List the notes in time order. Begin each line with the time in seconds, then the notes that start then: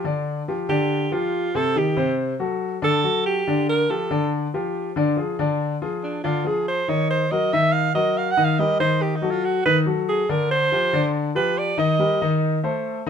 0.04 D3 D4 D5
0.48 F3 F4 G4
0.69 D3 D4 G4 D5
1.11 F3 F4 G4
1.55 C3 C4 A4 C5
1.76 D#3 D#4 G4
1.97 C3 C4 C5
2.39 F#3 F#4 A4
2.82 D3 D4 A4 D5
3.04 F#3 F#4 A4
3.26 G4
3.47 D3 D4 D5
3.69 A#4
3.90 F3 F4 G4 A4
4.11 D3 D4 D5
4.54 F3 F4 G4
4.96 D3 D4 D5
5.17 F3 F4 G#4
5.39 D3 D4 D5
5.82 F3 F4 G#4
6.03 D4
6.24 D3 D4 F4 D5
6.45 F3 F4 G#4
6.68 C5
6.88 D#3 D#4 C#5 D#5
7.10 C5
7.31 F#3 F#4 A#4 D#5
7.53 D#3 D#4 D#5 E5
7.72 F5
7.95 F#3 F#4 A#4 D#5
8.17 F5
8.31 F#5
8.37 D#3 D#4 D#5
8.45 F5
8.59 G3 G4 A#4 D#5
8.80 D#3 D#4 C5 D#5
9.02 G4
9.16 D#4
9.22 F#3 F#4 A4
9.31 F4
9.45 F#4
9.66 D#3 D#4 B4 D#5
9.86 F#3 F#4 A4
10.09 G#4
10.29 D3 D4 A#4 D5
10.51 C5
10.72 F3 F4 G4
10.93 D3 D4 D5
11.35 F3 F4 G4 B4
11.58 D5
11.77 D#3 D#4 D#5
11.99 G3 G4 A#4
12.22 D#3 D#4 D#5
12.64 A3 A4 C5
13.06 D#3